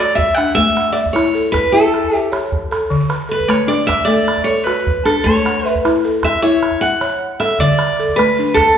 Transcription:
Already playing: A4 D5
0.00 F#4
0.15 E5, calabash thump
0.35 D4 F#5, calabash click
0.55 A3 E5, calabash thump, calabash click
0.76 F#5, calabash click
0.88 calabash click
0.92 D5
0.97 E5
1.06 calabash thump
1.13 E4 C#5, calabash click
1.25 calabash click
1.35 A4
1.52 B4, calabash thump, calabash click
1.72 E4 A4 E5
1.94 calabash click
2.04 calabash thump
2.13 G4 E5
2.32 C#5, calabash click
2.44 calabash click
2.52 calabash thump
2.71 A4, calabash click
2.90 D3, calabash thump
3.10 B4, calabash click
3.29 A4 B4
3.40 calabash thump
3.48 A3 C#5, calabash click
3.67 D4 D5
3.87 E5, calabash thump, calabash click
4.05 A3 A4 D5
4.28 calabash click
4.37 calabash thump
4.44 A4 C#5
4.64 F#4 B4, calabash click
4.87 calabash thump
5.05 D4 A4, calabash click
5.24 A3 C#5, calabash thump
5.45 F#5, calabash click
5.66 B4 E5
5.75 calabash thump
5.85 E4, calabash click
6.05 A4
6.23 E5, calabash thump, calabash click
6.42 E4 C#5 E5
6.63 calabash click
6.72 calabash thump
6.81 E5 F#5
7.01 C#5, calabash click
7.40 A4 E5, calabash click
7.59 D3 D5, calabash thump
7.79 calabash click
7.99 A4
8.09 calabash thump
8.16 A3 B4, calabash click
8.39 D4
8.54 A4, calabash thump, calabash click

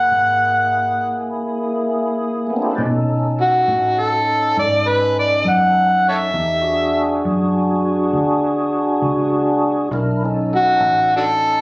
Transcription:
Already playing: A#3 E4 G#4 F#5
0.12 G#1
2.47 A3 B3
2.54 C4 D4
2.59 E4 F4
2.65 G4 A4
2.70 B4 C5
2.75 B2 C#4 D#4 A4 D5
3.41 F#4
3.68 A2
3.99 A4
4.57 G#2 D5
4.88 B4
5.20 D5
5.45 F#2
5.49 F#5
6.09 A4 C#5 E5
6.33 E2 D#4 G4 A4
6.62 D4 F#4 G#4
7.25 F#2
8.13 D2
9.02 C#2
9.91 B1 D4 E4 A#4
10.24 C#4 D#4 A4
10.56 F#4
10.80 A1
11.17 D4 F#4 A4

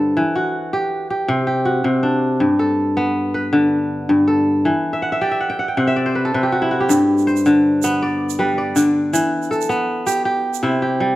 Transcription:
Already playing: G2 D3 A4 C5 D5
0.17 E3
0.36 F#4
0.73 G4
1.10 G4
1.28 C3
1.47 G4
1.65 F#4
1.84 C3
2.03 D4
2.40 G2
2.59 A4
2.97 B3
3.34 B4
3.53 D3
4.09 G2
4.28 A4
4.65 E3
4.93 E5
5.02 F#5
5.12 E5
5.21 G4 D5
5.31 E5
5.41 F#5
5.50 G5
5.59 F#5
5.68 G5
5.77 C3 F#5
5.87 E5
5.96 D5
6.06 C5
6.15 B4
6.25 A4
6.34 C3 B4
6.43 G4
6.52 F#4
6.62 E4
6.71 F#4
6.80 G4
6.89 G2, shaker
7.18 shaker
7.27 C5, shaker
7.36 shaker
7.45 D3, shaker
7.83 B3, shaker
8.02 D5
8.30 shaker
8.39 G3 B4
8.58 D5
8.76 D3, shaker
9.13 E3, shaker
9.43 shaker
9.51 A4, shaker
9.61 shaker
9.69 B3
10.06 G4, shaker
10.25 G4
10.54 shaker
10.63 C3 E4
10.82 G4
11.00 G3

